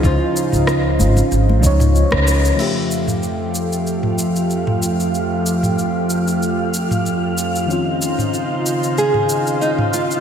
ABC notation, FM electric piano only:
X:1
M:4/4
L:1/8
Q:"Swing 16ths" 1/4=94
K:F
V:1 name="FM electric piano"
[F,_D_Ec]4- [F,DEc] [F,DE_d]3 | [F,A,Ge]8- | [F,A,Ge]8 | [_E,C_DF]8 |]